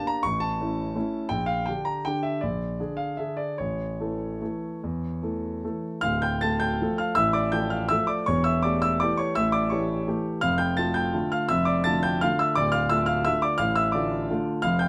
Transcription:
Already playing: A#3 D4 G4
0.07 A#5
0.23 A1 C#6
0.40 A5
0.61 A3 C#4 E4
0.95 A3 C#4 E4
1.29 A#1 G5
1.46 F5
1.66 D3 D4 G4 G5
1.85 A#5
2.05 D3 D4 G4 G5
2.23 E5
2.41 A#1 D5
2.80 D3 D4 G#4
2.97 F5
3.17 D3 D4 G#4 E5
3.37 D5
3.58 A1 C#5
4.00 E3 A3 A4
4.42 E3 A3 A4
4.83 E2
5.23 E3 A3 A4
5.64 E3 A3 A4
6.01 D1 D2 F5 F6
6.22 G5 G6
6.41 A3 A4 A5 A6
6.60 G5 G6
6.81 F3 A3 A4
6.98 F5 F6
7.15 A1 A2 E5 E6
7.33 D5 D6
7.52 F3 A3 A4 G5 G6
7.70 F5 F6
7.89 F3 A3 A4 E5 E6
8.07 D5 D6
8.26 E1 E2 C#5 C#6
8.44 E5 E6
8.63 A3 G4 D5 D6
8.82 E5 E6
9.00 E3 A3 G4 D5 D6
9.17 C#5 C#6
9.35 A1 A2 E5 E6
9.52 D5 D6
9.70 E3 A3 G4 C#5 C#6
10.07 E3 A3 G4
10.41 F1 F2 F5 F6
10.58 G5 G6
10.77 A3 F4 A5 A6
10.94 G5 G6
11.14 D3 A3 F4
11.32 F5 F6
11.49 F1 F2 E5 E6
11.65 D5 D6
11.84 D3 A3 F4 A5 A6
12.03 G5 G6
12.21 D3 A3 F4 F5 F6
12.39 E5 E6
12.55 D1 D2 D5 D6
12.72 F5 F6
12.89 A3 F4 E5 E6
13.06 F5 F6
13.25 D3 A3 F4 E5 E6
13.42 D5 D6
13.58 A1 A2 F5 F6
13.76 E5 E6
13.92 D3 A3 F4 D5 D6
14.30 D3 A3 F4
14.62 F1 F2 F5 F6
14.79 G5 G6

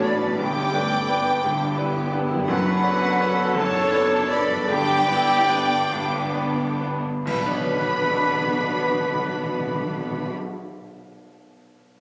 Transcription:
Already playing: A1 B1 A2 B2 B3 C#4 D4 F#4 B4 C#5 C#6
0.03 B3 D4 B4 D5 B5
0.21 G2
0.26 B3
0.30 D4
0.35 B3 G4 B4 D5 G5 D6
0.39 G1 G2 G5
0.72 A3 B3 D4 A4 B4
1.08 B3 D4 B4
1.43 G1 G2 B3 D4 G4
1.77 B3 D4 E4 B4
2.12 B3 D4 E4 B4
2.29 F#2
2.33 B3
2.38 D4
2.42 A4 C#6
2.47 F#1 F#2 C#4 D4 F#4 B4 F#5
2.84 B3 D4 C#5
3.19 B3 D4 C#5
3.55 F#1 F#2 D4 A4 C#5 A5
3.92 B3 D4 C#5
4.29 B3 D4 B4 D5 B5
4.49 G2
4.54 B3
4.59 D4
4.63 B4
4.67 G1 G2 B3 D4 G4 D5 G5 D6
5.08 B3 D4 E4 B4
5.49 B3 D4 B4
5.90 G1 G2 B3 D4 B4
6.34 B3 D4 B4
6.80 B3 D4 B4
7.25 B1 B2 F#3 B3 D4 B4 B5, concert bass drum, crash
7.33 B2 B3
7.40 B2 B3 D4
7.47 B2 D4 C#5
7.54 C#5
7.58 B2
7.65 B2
7.72 B2
7.79 B2
7.86 B2
7.94 B2
8.01 B2
8.09 B2
8.16 B2
8.24 B2
8.31 B2
8.38 B2
8.45 B2
8.53 B2
8.61 B2
8.68 B2
8.76 B2
8.83 B2
8.92 B2
8.99 B2
9.06 B2
9.13 B2
9.21 B2
9.28 B2
9.36 B2
9.43 B2
9.51 B2
9.58 B2
9.65 B2
9.73 B2
9.79 B2
9.88 B2
9.95 B2
10.02 B2
10.10 B2
10.18 B2
10.26 B2

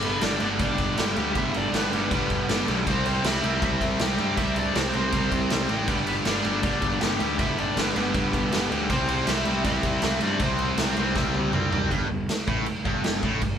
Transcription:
Already playing: G1 G2 D3 G3
0.02 B3 B4, crash
0.21 G1 G2 D3 G3 D4 D5, snare, crash
0.40 G1 G2 D3 G3, crash
0.59 G1 G2 D3 G3 D4, kick, crash
0.63 D5
0.78 G1, kick, crash
0.97 G1 G2 D3 G3 G4 G5, snare, crash
1.16 D2 G2 D3 G3, crash
1.35 G1 G2 D3 G3 E4 E5, kick, crash
1.54 D4 D5, crash
1.73 G1 G2 D3 G3 B3 B4, snare, crash
1.92 G1 G2 D3 G3 B3 B4, crash
2.11 G1 G2 D3 G3, kick, crash
2.30 G1, kick, crash
2.49 G1 G2 D3 G3, snare, crash
2.68 B1 G2 D3 G3, crash
2.87 C2 C3 G3 C4 C5, kick, crash
3.06 C4 C5, crash
3.24 C2 C3 G3 C4 E4 E5, snare, crash
3.43 C2 C3 G3 C4, crash
3.62 C2 C3 G3 C4 E4 E5, kick, crash
3.81 C2, kick, crash
3.99 C2 C3 G3 C4 G4 G5, snare, crash
4.18 G2 C3 G3 C4, crash
4.37 C2 C3 G3 C4 E4 E5, kick, crash
4.56 D4 D5, crash
4.75 C2 C3 G3 C4 C5, snare, crash
4.93 C2 C3 G3 C4 C5, crash
5.12 C2 C3 G3 C4, kick, crash
5.32 C2, kick, crash
5.50 C2 C3 G3 C4, snare, crash
5.69 A1 C3 G3 C4, crash
5.87 G1 G2 D3 G3 B3 B4, kick, crash
6.07 B3 B4, crash
6.25 G1 G2 D3 G3 D4 D5, snare, crash
6.44 G1 G2 D3 G3, crash
6.63 G1 G2 D3 G3 D4 D5, kick, crash
6.82 G1, kick, crash
7.01 G1 G2 D3 G3 G4 G5, snare, crash
7.20 D2 G2 D3 G3, crash
7.38 G1 G2 D3 G3 E4 E5, kick, crash
7.58 D4 D5, crash
7.76 G1 G2 D3 G3 B3 B4, snare, crash
7.95 G1 G2 D3 G3 B3 B4, crash
8.14 G1 G2 D3 G3, kick, crash
8.33 G1, kick, crash
8.52 G1 G2 D3 G3, snare, crash
8.71 D2 G2 D3 G3, crash
8.90 C2 C3 G3 C4 C5, kick, crash
9.09 C4 C5, crash
9.27 C2 C3 G3 C4 E4 E5, snare, crash
9.45 C2 C3 G3 C4, crash
9.64 C2 C3 G3 C4 E4 E5, kick, crash
9.83 C2, kick, crash
10.02 C2 C3 G3 C4, snare, crash
10.21 G2 C3 G3 C4 D4 D5, crash
10.40 C2 C3 G3 C4 C5, kick, crash
10.59 crash
10.78 C2 C3 G3 C4, snare, crash
10.96 C2 C3 G3 C4, crash
11.15 C2 C3 G3 C4, kick, snare
11.34 C2, high tom
11.52 C2 C3 G3 C4, mid tom
11.71 C2 C3 G3 C4, floor tom
11.90 G1 G2, kick, crash
12.09 G1 G2
12.29 snare, crash
12.47 A1 A2, kick
12.66 muted distorted electric guitar stroke, muted picked electric bass stroke, crash
12.85 G1 G2, kick
13.04 snare, crash
13.22 A1 A2, kick
13.42 G1 G2, kick, crash

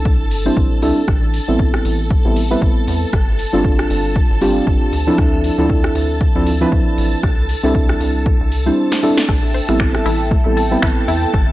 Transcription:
Already playing: C2 G3 C4 D4 E4 A4 A5
0.05 kick
0.20 G1
0.31 open hi-hat
0.45 G3 C4 D4 E4 C5
0.57 A1, kick
0.82 C2 G3 C4 D4 E4 A4, open hi-hat
1.08 A1, kick, cross-stick
1.34 open hi-hat
1.48 A1 G3 B3 C4 E4 A4
1.59 kick
1.74 cross-stick
1.85 A1, open hi-hat
2.10 kick
2.25 A1 G3 B3 C4 E4 A4
2.36 open hi-hat
2.50 G3 B3 C4 E4 B4
2.62 A1, kick
2.88 E2, open hi-hat
3.13 G1, kick, cross-stick
3.39 open hi-hat
3.53 G1 G3 C4 D4 F4 A4
3.64 kick
3.79 cross-stick
3.90 G1, open hi-hat
4.16 kick
4.30 G1
4.41 G3 C4 D4 F4 G4, open hi-hat
4.67 G1, kick
4.92 D2, open hi-hat
5.07 F3 C4 D4 E4 A4
5.18 D2, kick, cross-stick
5.44 open hi-hat
5.58 D2 F3 C4 D4 E4 A4
5.69 kick
5.84 cross-stick
5.95 D2, open hi-hat
6.21 kick
6.35 D2 F3 C4 D4 E4 A4
6.46 open hi-hat
6.61 F3 C4 D4 E4 B4
6.72 D2, kick
6.98 A1, open hi-hat
7.23 C2, kick, cross-stick
7.49 open hi-hat
7.63 C2 G3 C4 D4 E4 A4
7.75 kick
7.89 cross-stick
8.00 C2, open hi-hat
8.26 kick
8.41 C2
8.52 open hi-hat
8.66 G3 C4 D4 E4 C5
8.92 snare
9.03 G3 C4 D4 E4 A4, open hi-hat
9.17 snare
9.28 A1 A4 E5 G5 A5, kick, cross-stick, crash
9.54 C5, open hi-hat
9.68 A1 G3 B3 C4 E4 A4, finger snap
9.80 G4, finger snap, kick
9.95 cross-stick
10.06 A1 E4, open hi-hat
10.31 A3, kick
10.45 A1 G3 B3 C4 E4 A4
10.57 A5, open hi-hat
10.71 G3 B3 C4 E4 B4
10.82 A1 E4, finger snap, kick
11.08 E2 E4, open hi-hat
11.34 G1 A4, kick, cross-stick

